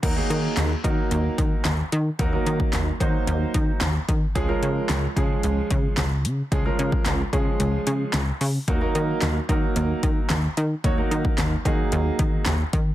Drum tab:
CC |x---------------|----------------|----------------|----------------|
HH |x-x-x-x-x-x-x-x-|x-x-x-x-x-x-x-x-|x-x-x-x-x-x-x-x-|x-x-x-x-x-x-x-o-|
CP |----x-------x---|----x-------x---|----x-------x---|----x-------x---|
SD |----o-------o---|----o-------o---|----o-------o---|----o-------o---|
BD |o-----o---o-----|o--o--o---o---o-|o-----o---o-----|o--o--o---------|

CC |----------------|----------------|
HH |x-x-x-x-x-x-x-x-|x-x-x-x-x-x-x-x-|
CP |----x-------x---|----x-------x---|
SD |----o-------o---|----o-------o---|
BD |o-----o---o-----|o--o--o---o---o-|